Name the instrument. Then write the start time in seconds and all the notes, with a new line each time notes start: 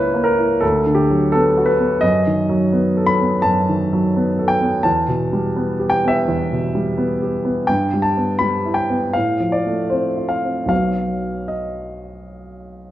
grand piano
Already playing: C#2 C#3 A#3 E4 A#4 B4 C#5
0.14 A#3
0.24 A#4
0.38 E4
0.61 D2 A4
0.86 D3
0.95 G4
1.10 F#3
1.32 B3 A4
1.57 F#4
1.66 B4
1.79 B3
2.01 F#2 D#5
2.27 D#3
2.49 F#3
2.73 B3
2.97 A4
3.06 B5
3.21 B3
3.42 F#2 A5
3.69 D#3
3.93 F#3
4.16 B3
4.39 A4
4.48 G5
4.61 B3
4.83 E2 A5
5.08 B2
5.33 G3
5.56 B3
5.80 G4
5.90 G5
6.04 B3 E5
6.28 E2
6.53 B2
6.75 G3
6.98 B3
7.22 G4
7.45 B3
7.67 G2 G5
7.93 G3
8.02 A5
8.17 B3
8.39 G3 B5
8.65 E4
8.74 G5
8.90 B3
9.13 A2 F5
9.40 F3
9.52 D5
9.66 A3
9.90 C4 C5
10.17 F4
10.29 F5
10.44 C4
10.66 B1 F#3 B3 F5
10.70 F#4
11.48 D#5